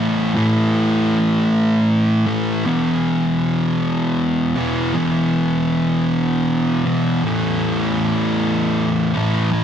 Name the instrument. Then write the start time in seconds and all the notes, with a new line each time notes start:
distorted electric guitar
Already playing: E2 E3 A3
0.00 A2
0.35 A2 E3 A3
2.26 A2 E3 A3
2.65 E2 B2 E3
4.56 E2 B2 E3
4.94 E2 B2 E3
6.85 E2 B2 E3
7.23 A2 E3 A3
9.14 A2 E3 A3
9.52 A2 E3 A3